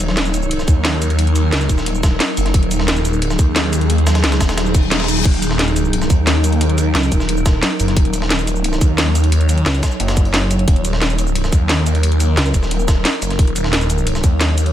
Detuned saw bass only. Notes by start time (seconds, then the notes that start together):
Already playing: D#1
0.68 D#2
1.52 C#2
1.69 D#1
2.37 F#1
2.54 D#1
3.13 D1
4.24 C#2
4.41 D#1
5.25 D#1
6.10 D#2
7.12 D#1
7.80 F#1
7.97 D#1
8.81 D#2
10.68 D#1
11.52 D#2
12.54 D#1
13.22 F#1
14.24 D#2